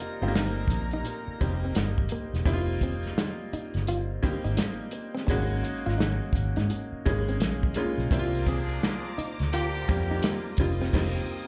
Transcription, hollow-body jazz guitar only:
0.02 muted hollow-body jazz guitar stroke soft
0.23 0.30 F4 medium
0.37 0.49 D#4 medium
0.72 muted hollow-body jazz guitar stroke soft
0.93 1.01 D#4 medium
1.07 muted hollow-body jazz guitar stroke soft
1.41 1.54 C4 medium
1.65 1.72 C4 medium
2.12 2.25 A#3 medium
2.83 2.96 C4 medium
3.54 3.66 D#4 medium
3.88 4.01 F4 medium
4.23 muted hollow-body jazz guitar stroke soft
4.44 4.52 D#4 medium
4.57 4.70 D#4 medium
4.93 muted hollow-body jazz guitar stroke soft
5.15 5.22 C4 medium
5.27 5.40 C#4 medium
5.63 muted hollow-body jazz guitar stroke soft
5.86 5.94 F4 medium
5.98 6.11 D#4 medium
6.35 muted hollow-body jazz guitar stroke soft
6.57 6.64 D#4 medium
6.71 muted hollow-body jazz guitar stroke soft
7.07 7.19 C#4 medium
7.29 7.36 C4 medium
7.77 7.90 A#3 medium
8.48 8.61 C4 medium
9.18 9.31 D#4 medium
9.54 9.66 F4 medium
9.89 muted hollow-body jazz guitar stroke soft
10.11 10.18 D#4 medium
10.25 10.37 D#4 medium
10.60 muted hollow-body jazz guitar stroke soft
10.82 10.89 C4 medium

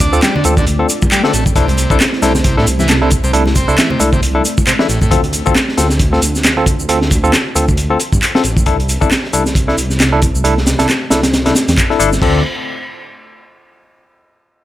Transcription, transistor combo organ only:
0.00 0.21 D4 medium
0.23 0.35 G3 medium
0.35 0.44 D3 medium
0.58 0.65 D3 loud
1.12 1.22 G3 loud
1.24 1.33 D3 medium
1.34 1.44 A3 medium
1.56 1.99 C3 medium
2.22 2.33 C3 loud
2.45 2.56 C3 medium
2.58 2.66 A2 loud
2.80 2.88 E3 loud
2.89 2.95 A3 loud
3.02 3.11 C3 medium
3.24 3.32 C3 loud
3.56 3.77 C4 medium
3.78 3.90 E3 medium
3.90 4.00 C3 medium
4.13 4.21 C3 loud
4.67 4.73 C3 loud
4.79 4.87 E3 medium
4.89 5.00 A2 medium
5.02 5.11 A2 medium
12.22 12.43 D3 medium

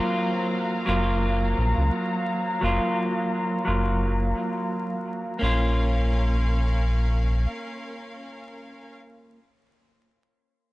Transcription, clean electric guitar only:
0.00 0.83 F#3 medium
0.00 0.84 A#3 medium
0.00 0.84 F4 medium
0.86 2.57 F#3 medium
0.86 2.58 A#3 medium
0.86 2.59 F4 medium
2.61 3.62 F#3 medium
2.61 3.63 A#3 medium
2.61 3.64 F4 medium
3.65 5.36 F#3 medium
3.65 5.37 A#3 medium
3.65 5.38 F4 medium
5.39 9.38 A#3 medium
5.39 9.40 C#4 medium
5.43 9.43 F4 medium

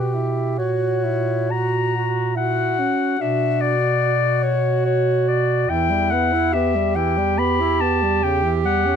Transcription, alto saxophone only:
0.00 0.16 F#4 soft
0.14 0.60 E4 soft
0.59 1.06 F#4 soft
1.04 1.52 E4 soft
1.50 1.94 F#4 soft
1.95 2.37 F#4 soft
2.36 2.80 E4 soft
2.79 3.18 C#4 soft
3.19 3.75 D4 soft
4.01 5.71 F#4 medium
5.69 6.54 E4 medium
6.53 8.96 G4 medium

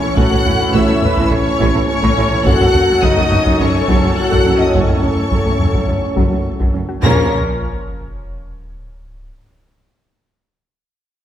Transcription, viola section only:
0.00 0.18 C#5 medium
0.17 0.45 A4 medium
0.46 0.75 B4 medium
0.75 1.03 C#5 loud
1.04 1.32 B4 loud
1.33 1.88 C#5 loud
1.89 2.45 C#5 loud
2.46 3.03 A4 loud
3.02 3.60 F#4 loud
3.60 4.73 A4 loud
4.75 6.71 A4 medium
7.03 7.35 C#4 loud
7.03 7.35 A#4 medium

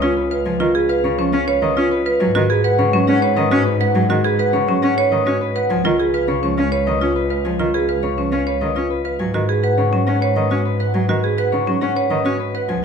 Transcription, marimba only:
0.02 0.21 F4 medium
0.31 0.50 B4 medium
0.60 0.79 F4 medium
0.75 0.94 G#4 medium
0.90 1.08 B4 medium
1.19 1.37 C#4 medium
1.48 1.67 C#5 medium
1.77 1.96 F4 medium
2.06 2.25 B4 medium
2.35 2.54 F#4 medium
2.50 2.69 G#4 medium
2.64 2.83 B4 medium
2.93 3.12 C#4 medium
3.22 3.41 C#5 medium
3.51 3.70 F#4 medium
3.81 4.00 B4 medium
4.10 4.29 F#4 medium
4.24 4.43 G#4 medium
4.39 4.58 B4 medium
4.69 4.87 C#4 medium
4.98 5.16 C#5 medium
5.27 5.45 F#4 medium
5.56 5.74 B4 medium
5.85 6.04 F4 medium
6.00 6.18 G#4 medium
6.14 6.33 B4 medium
6.43 6.62 C#4 medium
6.72 6.91 C#5 medium
7.01 7.20 F4 medium
7.30 7.49 B4 medium
7.60 7.78 F4 medium
7.74 7.93 G#4 medium
7.89 8.07 B4 medium
8.18 8.37 C#4 medium
8.47 8.66 C#5 medium
8.76 8.95 F4 medium
9.05 9.24 B4 medium
9.34 9.53 F#4 medium
9.49 9.68 G#4 medium
9.64 9.82 B4 medium
9.93 10.11 C#4 medium
10.22 10.41 C#5 medium
10.51 10.70 F#4 medium
10.80 10.99 B4 medium
11.09 11.28 F#4 medium
11.24 11.42 G#4 medium
11.38 11.57 B4 medium
11.67 11.86 C#4 medium
11.97 12.15 C#5 medium
12.26 12.44 F#4 medium
12.55 12.73 B4 medium

